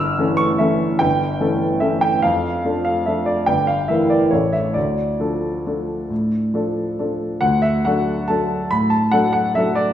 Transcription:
0.00 0.16 G1 medium
0.00 0.38 E6 medium
0.19 0.56 E3 soft
0.19 0.56 C#4 soft
0.19 0.57 A4 soft
0.37 0.59 C#6 medium
0.58 0.96 E3 soft
0.58 0.96 C#4 soft
0.58 0.96 A4 soft
0.58 0.99 E5 medium
0.99 1.40 G1 soft
0.99 1.82 G5 medium
1.40 1.79 E3 soft
1.40 1.79 C#4 soft
1.40 1.79 A4 soft
1.80 2.19 E3 soft
1.80 2.19 C#4 soft
1.80 2.20 A4 soft
1.80 2.02 E5 medium
2.01 2.23 G5 medium
2.22 2.63 F2 soft
2.22 2.83 F5 medium
2.65 3.03 F3 soft
2.65 3.03 D4 soft
2.65 3.03 A4 soft
2.85 3.06 F5 medium
3.06 3.44 F3 soft
3.06 3.44 D4 soft
3.06 3.44 A4 soft
3.06 3.27 E5 soft
3.26 3.47 D5 medium
3.46 3.88 G1 soft
3.46 3.67 G5 medium
3.67 3.88 F5 medium
3.88 4.28 E3 soft
3.88 4.28 E4 soft
3.88 4.28 A#4 soft
3.88 4.10 E5 medium
4.10 4.32 D5 medium
4.31 4.74 A1 soft
4.31 4.71 E3 soft
4.31 4.72 E4 soft
4.31 4.72 A4 soft
4.31 4.53 C#5 soft
4.53 4.75 E5 soft
4.74 5.19 D2 soft
4.74 6.97 D5 soft
5.20 5.62 F3 soft
5.20 5.63 D4 soft
5.20 5.63 A4 soft
5.66 6.06 F3 soft
5.66 6.07 D4 soft
5.66 6.07 A4 soft
6.10 6.52 A2 soft
6.54 6.94 F3 soft
6.54 6.95 D4 soft
6.54 6.95 A4 soft
6.99 7.39 F3 soft
6.99 7.39 D4 soft
6.99 7.39 A4 soft
7.41 7.83 D2 soft
7.41 7.63 F#5 medium
7.62 7.84 E5 medium
7.85 8.25 F#3 soft
7.85 8.26 D4 soft
7.85 8.26 A4 soft
7.85 8.29 F#5 medium
8.28 8.68 F#3 soft
8.28 8.68 D4 soft
8.28 8.68 A4 soft
8.28 8.71 A5 medium
8.71 9.12 A2 soft
8.71 8.91 B5 medium
8.90 9.12 A5 medium
9.11 9.53 F#3 soft
9.11 9.52 D4 soft
9.11 9.53 A4 soft
9.11 9.31 F#5 medium
9.33 9.56 F#5 medium
9.55 9.93 F#3 soft
9.55 9.93 D4 soft
9.55 9.93 A4 soft
9.55 9.78 E5 medium
9.75 9.93 D5 medium

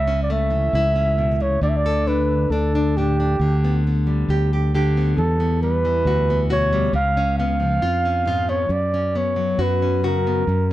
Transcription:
0.00 0.70 C#2 medium
0.00 0.51 C#3 medium
0.00 0.22 E5 medium
0.08 0.94 C#4 soft
0.23 0.33 D5 medium
0.30 1.58 A3 soft
0.30 1.43 E5 medium
0.50 1.57 E3 soft
0.73 1.58 C#2 medium
0.73 1.63 E4 medium
0.95 1.57 C#4 soft
1.18 1.40 B2 soft
1.40 1.62 C#3 medium
1.40 1.62 C#5 medium
1.61 2.47 D2 medium
1.61 3.35 D3 medium
1.61 1.71 D5 medium
1.69 1.78 E5 medium
1.77 2.09 D5 medium
1.86 3.35 A4 medium
2.07 2.51 D4 soft
2.07 2.52 B4 medium
2.50 3.35 D2 medium
2.50 2.74 D4 soft
2.50 2.98 A4 medium
2.75 2.97 D4 soft
2.97 3.35 A2 medium
2.97 3.19 D4 soft
2.97 3.85 G4 medium
3.20 3.36 D4 soft
3.39 4.24 D2 medium
3.39 4.73 D3 medium
3.64 3.87 B3 soft
3.87 4.97 B3 medium
4.07 5.61 G3 medium
4.28 5.13 D2 medium
4.28 4.52 G4 medium
4.53 4.74 G4 medium
4.75 5.18 D3 soft
4.75 5.13 G4 medium
4.97 5.39 B3 soft
5.17 6.02 E2 medium
5.17 6.95 E2 medium
5.17 5.59 A4 medium
5.40 6.28 B3 medium
5.63 6.72 G3 soft
5.63 6.47 B4 medium
5.85 6.89 E3 medium
6.05 6.90 D2 medium
6.05 6.49 F#4 soft
6.30 7.17 B3 soft
6.50 6.89 B2 soft
6.50 6.89 F#4 medium
6.50 6.92 C#5 medium
6.73 6.95 G3 soft
6.93 7.78 C#2 medium
6.93 7.60 C#3 medium
6.93 7.36 F5 medium
7.17 8.05 C#4 soft
7.39 8.48 B3 soft
7.39 8.51 F5 medium
7.60 8.66 F3 soft
7.82 8.67 F2 medium
7.82 8.26 F4 medium
8.05 8.93 C#4 soft
8.26 8.65 G#2 soft
8.26 8.66 F4 medium
8.49 8.66 B3 soft
8.49 8.74 C#5 medium
8.69 9.55 F#2 medium
8.69 10.43 F#2 medium
8.69 9.18 D5 medium
8.94 9.82 C#4 medium
9.15 10.26 B3 soft
9.15 9.63 C#5 medium
9.36 10.43 F#3 soft
9.58 10.44 F#2 medium
9.58 10.03 F#4 medium
9.58 10.05 B4 medium
9.82 10.71 C#4 soft
10.04 10.43 C#3 medium
10.04 10.43 F#4 medium
10.04 10.73 A#4 medium
10.27 10.44 B3 soft
10.47 10.73 F#2 medium

